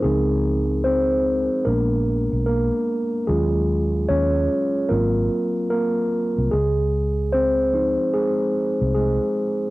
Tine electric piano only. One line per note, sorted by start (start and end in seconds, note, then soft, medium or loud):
0.00 1.62 F3 medium
0.00 0.85 C4 soft
0.00 0.87 G#4 medium
0.00 0.27 A#4 medium
0.05 0.81 G#3 medium
0.05 1.62 D#4 medium
0.84 1.63 C4 medium
0.84 1.62 C5 loud
1.65 2.83 G#3 medium
1.65 2.44 A#3 medium
1.65 2.84 B3 soft
1.65 2.84 D4 medium
1.65 2.42 A#4 medium
2.46 3.10 A#3 medium
2.46 3.09 A#4 medium
3.27 4.46 F#3 medium
3.27 4.06 G#3 medium
3.27 4.09 C#4 medium
3.27 4.46 F4 medium
3.27 4.11 G#4 loud
4.08 4.87 C#4 medium
4.08 4.86 C#5 loud
4.89 6.48 F#3 medium
4.89 5.68 A#3 medium
4.89 6.48 C4 soft
4.89 6.48 F4 medium
4.89 5.67 A#4 medium
5.70 6.34 A#3 medium
5.70 6.33 A#4 loud
6.51 7.30 G#3 medium
6.51 7.29 G#4 medium
7.33 7.73 C4 medium
7.33 8.10 C5 loud
7.73 9.70 F3 medium
7.73 9.70 C4 soft
7.73 9.70 D#4 medium
8.14 8.92 G#3 medium
8.14 8.93 G#4 medium
8.95 9.58 G#3 medium
8.95 9.57 G#4 medium